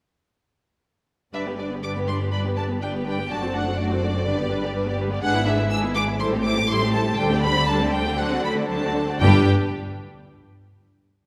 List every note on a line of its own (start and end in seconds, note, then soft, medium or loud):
1.33 3.26 G1 soft
1.33 3.26 G2 soft
1.33 1.45 G3 soft
1.33 1.45 D4 soft
1.33 1.45 B4 soft
1.33 1.45 D5 soft
1.33 1.42 E5 medium
1.46 1.59 B3 soft
1.46 1.59 G4 soft
1.46 1.57 B4 soft
1.58 1.71 G3 soft
1.58 1.71 D4 soft
1.58 1.71 B4 soft
1.58 1.71 D5 soft
1.58 1.67 D5 soft
1.70 1.83 B3 soft
1.70 1.84 G4 soft
1.70 1.83 B4 soft
1.83 1.95 G3 soft
1.83 1.95 D4 soft
1.83 1.95 B4 soft
1.83 1.96 D5 soft
1.83 1.92 D6 medium
1.96 2.08 B3 soft
1.96 2.09 G4 soft
1.96 2.07 B4 soft
2.08 2.20 G3 soft
2.08 2.20 D4 soft
2.08 2.20 B4 soft
2.08 2.21 D5 soft
2.08 2.16 C6 medium
2.20 2.32 B3 soft
2.20 2.33 G4 soft
2.20 2.31 B4 soft
2.32 2.44 G3 soft
2.32 2.44 D4 soft
2.32 2.44 B4 soft
2.32 2.44 D5 soft
2.32 2.40 B5 medium
2.45 2.57 B3 soft
2.45 2.57 G4 soft
2.45 2.56 B4 soft
2.57 2.69 G3 soft
2.57 2.69 D4 soft
2.57 2.68 B4 soft
2.57 2.69 D5 soft
2.57 2.65 A5 medium
2.69 2.81 B3 soft
2.69 2.82 G4 soft
2.69 2.80 B4 soft
2.82 2.93 G3 soft
2.82 2.93 D4 soft
2.82 2.93 B4 soft
2.82 2.93 D5 soft
2.82 2.90 G5 medium
2.94 3.06 B3 soft
2.94 3.06 G4 soft
2.94 3.05 B4 soft
3.06 3.18 G3 soft
3.06 3.18 D4 soft
3.06 3.17 B4 soft
3.06 3.18 D5 soft
3.06 3.30 G5 medium
3.18 3.30 B3 soft
3.18 3.30 G4 soft
3.18 3.30 B4 soft
3.30 4.25 F#1 medium
3.30 4.25 F#2 soft
3.30 3.41 A3 soft
3.30 3.41 D4 soft
3.30 3.41 F#4 soft
3.30 3.41 D5 soft
3.30 3.54 A5 medium
3.42 3.55 C4 soft
3.42 3.55 F#4 soft
3.42 3.54 A4 soft
3.42 3.54 C5 soft
3.54 3.67 A3 soft
3.54 3.67 D4 soft
3.54 3.66 F#4 soft
3.54 3.66 D5 soft
3.54 3.78 F#5 medium
3.66 3.79 C4 soft
3.66 3.79 F#4 soft
3.66 3.78 A4 soft
3.66 3.78 C5 soft
3.78 3.90 A3 soft
3.78 3.90 D4 soft
3.78 3.89 F#4 soft
3.78 3.90 D5 soft
3.78 4.98 D5 medium
3.90 4.03 C4 soft
3.90 4.03 F#4 soft
3.90 4.02 A4 soft
3.90 4.03 C5 soft
4.02 4.15 A3 soft
4.02 4.15 D4 soft
4.02 4.14 F#4 soft
4.02 4.14 D5 soft
4.14 4.27 C4 soft
4.14 4.27 F#4 soft
4.14 4.26 A4 soft
4.14 4.26 C5 soft
4.26 5.22 G1 soft
4.26 5.22 G2 medium
4.26 4.38 G3 soft
4.26 4.38 D4 medium
4.26 4.37 B4 soft
4.38 4.51 B3 soft
4.38 4.50 G4 soft
4.38 4.51 D5 soft
4.51 4.62 G3 soft
4.51 4.63 D4 soft
4.51 4.63 B4 medium
4.63 4.75 B3 soft
4.63 4.75 G4 soft
4.63 4.75 D5 soft
4.74 4.86 G3 soft
4.74 4.86 D4 medium
4.74 4.86 B4 medium
4.86 4.98 B3 soft
4.86 4.99 G4 soft
4.86 4.99 D5 soft
4.98 5.10 G3 medium
4.98 5.10 D4 soft
4.98 5.11 B4 medium
5.10 5.22 B3 medium
5.10 5.23 G4 medium
5.10 5.23 D5 soft
5.22 6.18 G#1 medium
5.22 6.18 G#2 medium
5.22 5.33 G#3 medium
5.22 5.33 D4 medium
5.22 5.34 G#4 medium
5.22 5.34 B4 medium
5.22 5.45 F#5 loud
5.34 5.46 B3 medium
5.34 5.46 E4 medium
5.34 5.46 E4 soft
5.34 5.46 G#4 soft
5.46 5.58 G#3 medium
5.46 5.58 D4 medium
5.46 5.58 G#4 medium
5.46 5.59 B4 medium
5.46 5.70 E5 medium
5.58 5.70 B3 medium
5.58 5.71 E4 soft
5.58 5.70 G#4 soft
5.70 5.82 G#3 medium
5.70 5.82 D4 medium
5.70 5.82 G#4 medium
5.70 5.82 B4 medium
5.70 5.78 E6 medium
5.83 5.95 B3 soft
5.83 5.95 E4 medium
5.83 5.94 G#4 medium
5.95 6.08 G#3 soft
5.95 6.08 D4 soft
5.95 6.07 G#4 soft
5.95 6.07 B4 medium
5.95 6.03 D6 medium
6.08 6.20 B3 soft
6.08 6.19 E4 soft
6.08 6.20 E4 medium
6.08 6.20 G#4 medium
6.19 7.18 A1 medium
6.19 7.17 A2 medium
6.19 6.31 G3 medium
6.19 6.31 E4 medium
6.19 6.31 A4 medium
6.19 6.31 C5 medium
6.19 6.28 C6 medium
6.32 6.45 A3 soft
6.32 6.44 C4 soft
6.32 6.45 G4 medium
6.32 6.43 A4 medium
6.44 6.57 G3 medium
6.44 6.57 E4 medium
6.44 6.55 A4 medium
6.44 6.57 C5 medium
6.44 6.68 D6 medium
6.56 6.69 A3 medium
6.56 6.69 C4 soft
6.56 6.68 G4 soft
6.56 6.68 A4 soft
6.69 6.80 G3 medium
6.69 6.80 E4 medium
6.69 6.80 A4 medium
6.69 6.80 C5 soft
6.69 6.93 C6 loud
6.82 6.94 A3 soft
6.82 6.94 C4 soft
6.82 6.93 G4 medium
6.82 6.93 A4 medium
6.93 7.05 G3 medium
6.93 7.06 E4 medium
6.93 7.05 A4 medium
6.93 7.05 C5 medium
6.93 7.17 A5 medium
7.06 7.18 A3 medium
7.06 7.18 C4 medium
7.06 7.18 G4 medium
7.06 7.17 A4 medium
7.18 8.95 D2 medium
7.18 8.95 D3 medium
7.18 7.29 G3 medium
7.18 7.30 D4 medium
7.18 7.29 A4 medium
7.18 7.29 C5 medium
7.18 7.42 G5 medium
7.31 7.43 A3 soft
7.31 7.43 C4 soft
7.31 7.43 G4 medium
7.31 7.43 D5 medium
7.42 7.55 G3 medium
7.42 7.55 D4 medium
7.42 7.55 A4 medium
7.42 7.55 C5 medium
7.42 7.66 B5 loud
7.56 7.68 A3 medium
7.56 7.68 C4 medium
7.56 7.68 G4 medium
7.56 7.68 D5 medium
7.67 7.79 G3 medium
7.67 7.79 D4 medium
7.67 7.79 A4 medium
7.67 7.79 C5 medium
7.67 7.92 A5 medium
7.80 7.93 A3 medium
7.80 7.92 C4 medium
7.80 7.93 G4 medium
7.80 7.93 D5 medium
7.92 8.05 G3 medium
7.92 8.05 D4 medium
7.92 8.05 A4 soft
7.92 8.05 C5 medium
7.92 8.17 G5 medium
8.05 8.18 A3 soft
8.05 8.18 C4 soft
8.05 8.18 G4 medium
8.05 8.18 D5 medium
8.17 8.29 F#3 medium
8.17 8.29 D4 medium
8.17 8.29 A4 medium
8.17 8.30 C5 medium
8.17 8.43 F#5 medium
8.30 8.43 A3 medium
8.30 8.43 C4 medium
8.30 8.43 F#4 medium
8.30 8.43 D5 medium
8.43 8.55 F#3 medium
8.43 8.55 D4 medium
8.43 8.56 A4 medium
8.43 8.56 C5 medium
8.43 8.52 B5 medium
8.55 8.68 A3 soft
8.55 8.68 C4 medium
8.55 8.68 F#4 soft
8.55 8.68 D5 medium
8.68 8.80 F#3 medium
8.68 8.80 D4 medium
8.68 8.80 A4 medium
8.68 8.80 C5 medium
8.68 9.19 A5 medium
8.81 8.94 A3 soft
8.81 8.94 C4 soft
8.81 8.94 F#4 soft
8.81 8.94 D5 soft
8.93 9.07 F#3 medium
8.93 9.07 D4 soft
8.93 9.07 A4 medium
8.93 9.07 C5 medium
9.07 9.20 A3 medium
9.07 9.20 C4 soft
9.07 9.20 F#4 soft
9.07 9.20 D5 soft
9.19 9.48 G1 medium
9.19 9.48 G2 medium
9.19 9.48 G3 medium
9.19 9.48 D4 medium
9.19 9.48 G4 medium
9.19 9.48 B4 medium
9.19 9.48 G5 loud